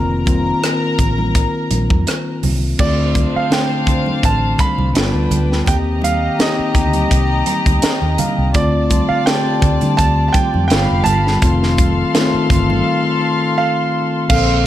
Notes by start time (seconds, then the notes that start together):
Already playing: F1 D#3 A#3 C4 F4 A#4 A#5
0.26 D#3 A#3 C4 F4, kick, closed hi-hat, muted conga, high conga
0.64 cross-stick, closed hi-hat
0.98 A1, kick, closed hi-hat, low conga
1.18 high conga
1.35 kick, closed hi-hat, muted conga
1.71 A#1, closed hi-hat, muted conga, high conga
1.90 F2, kick, high conga
2.07 cross-stick, closed hi-hat, muted conga
2.43 C2, open hi-hat, muted conga, high conga, low conga
2.79 D2 D3 A3 C4 D4 F4 C5 D5 F5, kick, crash, low conga
3.14 kick, closed hi-hat, high conga
3.35 F5, muted fingered electric bass stroke
3.50 D3 A3 C4 D4 G5, snare, closed hi-hat, muted conga
3.87 kick, closed hi-hat, low conga
4.06 high conga
4.23 A1 A5, kick, closed hi-hat
4.58 B5, kick, closed hi-hat, muted conga, high conga
4.78 C2, high conga
4.94 G1 D3 G3 B3 D4 F4 B4 G5, snare, closed hi-hat
5.14 D2
5.31 D2, closed hi-hat, high conga, low conga
5.52 snare
5.66 D#2 D#3 A#3 C4 G4 D#5 G5 A#5, kick, closed hi-hat, low conga
6.02 F5, closed hi-hat, muted conga, high conga
6.39 A#3 C4 D#4 G4 D#5, snare, closed hi-hat, muted conga
6.59 muted fingered electric bass stroke
6.75 D2, kick, closed hi-hat, muted conga, low conga
6.93 closed hi-hat, high conga
7.11 C2, kick, closed hi-hat
7.46 A#5, closed hi-hat, high conga
7.66 D2, kick, closed hi-hat, high conga
7.82 G5, muted fingered electric bass stroke, snare, closed hi-hat, muted conga
8.02 D#2
8.18 F5, closed hi-hat, muted conga, high conga, low conga
8.38 C2
8.54 D2 D3 A3 C4 F4 D5 A5, kick, closed hi-hat, muted conga, low conga
8.90 kick, closed hi-hat, muted conga, high conga
9.09 F5, muted fingered electric bass stroke
9.26 D3 A3 C4 G4 G5, snare, closed hi-hat, muted conga
9.62 D2, kick, closed hi-hat, muted conga, low conga
9.81 D3, closed hi-hat, high conga
9.97 D2 A5, kick, closed hi-hat
10.28 A5
10.33 G5, kick, closed hi-hat, high conga
10.54 F2, high conga
10.68 G1 D3 G3 B3 G4 F5 G5 B5, snare, closed hi-hat
10.72 F4
10.91 F1
11.04 G1 A5, closed hi-hat, high conga, low conga
11.27 snare
11.42 F1 D#3 A3 C4 F4 A4 F5 C6, kick, closed hi-hat
11.63 snare
11.77 kick, closed hi-hat, muted conga, high conga
12.14 D#3 A3 C4 F4, snare, closed hi-hat, muted conga
12.34 muted fingered electric bass stroke
12.50 G1, kick, closed hi-hat, muted conga, low conga
12.70 high conga
13.58 F5
14.30 A#1 D3 A#3 C4 A4 C5 F5 C6, kick, crash